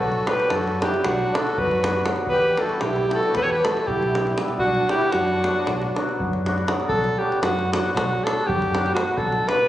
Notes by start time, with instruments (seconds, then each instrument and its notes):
Already playing: fingered electric bass B1, hammered dulcimer F#3, alto saxophone A4
0.00 accordion F#4
0.12 davul high
0.26 hammered dulcimer F#3 B3 D4 F#4, accordion G4, alto saxophone B4, davul high
0.40 davul high
0.50 fingered electric bass F#2, accordion F#4, alto saxophone A4, davul high
0.68 davul high
0.80 hammered dulcimer F#3 B3 D4 F#4, alto saxophone G4, davul high
0.84 accordion E4
0.94 alto saxophone G4, davul high
0.99 accordion E4
1.04 fingered electric bass B1, accordion D4, alto saxophone F#4, davul high, davul low
1.33 hammered dulcimer F#3 B3 D4 F#4, accordion F#4, alto saxophone A4, davul high
1.47 davul high
1.58 fingered electric bass F#2, accordion F#4, alto saxophone B4, davul low
1.71 davul high
1.84 hammered dulcimer F#3 B3 D4 F#4, davul high
2.06 hammered dulcimer F#3 B3 D4 F#4, davul high
2.16 davul high
2.27 fingered electric bass E2, accordion G4, alto saxophone B4, davul low
2.42 davul high
2.57 hammered dulcimer G3 B3 E4 G4, alto saxophone A4, davul high
2.62 accordion F#4
2.69 davul high
2.81 fingered electric bass B1, accordion E4, alto saxophone G4, davul high
2.96 davul high
3.10 hammered dulcimer G3 B3 E4 G4, accordion F#4, davul high
3.15 alto saxophone A4
3.23 davul high
3.35 fingered electric bass E2, accordion G4, alto saxophone B4, davul high, davul low
3.43 accordion A4, alto saxophone C#5
3.51 accordion G4, alto saxophone B4
3.64 hammered dulcimer G3 B3 E4 G4, accordion F#4, alto saxophone A4, davul high
3.77 davul high
3.87 fingered electric bass B1, accordion E4, alto saxophone G4, davul low
4.02 davul high
4.15 hammered dulcimer G3 B3 E4 G4, davul high
4.27 davul high
4.37 hammered dulcimer G3 B3 E4 G4, davul high
4.48 davul high
4.59 fingered electric bass B1, accordion D4, alto saxophone F#4, davul low
4.75 davul high
4.89 hammered dulcimer F#3 B3 D4 F#4, accordion E4, alto saxophone G4, davul high
5.01 davul high
5.12 fingered electric bass F#2, accordion D4, alto saxophone F#4, davul high
5.28 davul high
5.43 hammered dulcimer F#3 B3 D4 F#4, davul high
5.56 davul high
5.67 fingered electric bass B1, davul high, davul low
5.82 davul high
5.96 hammered dulcimer F#3 B3 D4 F#4, davul high
6.09 davul high
6.20 fingered electric bass F#2, davul low
6.33 davul high
6.46 hammered dulcimer F#3 B3 D4 F#4, davul high
6.58 davul high
6.67 hammered dulcimer F#3 B3 D4 F#4, davul high
6.80 davul high
6.88 fingered electric bass B1, alto saxophone A4, davul low
7.04 davul high
7.18 hammered dulcimer F#3 B3 D4 F#4, alto saxophone G4
7.32 davul high
7.42 fingered electric bass F#2, alto saxophone F#4, davul high
7.59 davul high
7.72 hammered dulcimer F#3 B3 D4 F#4, alto saxophone F#4, davul high
7.93 fingered electric bass B1, alto saxophone F#4, davul high, davul low
8.24 hammered dulcimer F#3 B3 D4 F#4, alto saxophone A4, davul high
8.47 fingered electric bass F#2, alto saxophone G4, davul low
8.62 davul high
8.74 hammered dulcimer F#3 B3 D4 F#4, davul high
8.86 davul high
8.94 hammered dulcimer F#3 B3 D4 F#4, alto saxophone F#4, davul high
9.07 davul high
9.17 fingered electric bass B1, alto saxophone A4, davul low
9.32 davul high
9.48 hammered dulcimer F#3 B3 D4 F#4, alto saxophone B4, davul high
9.59 davul high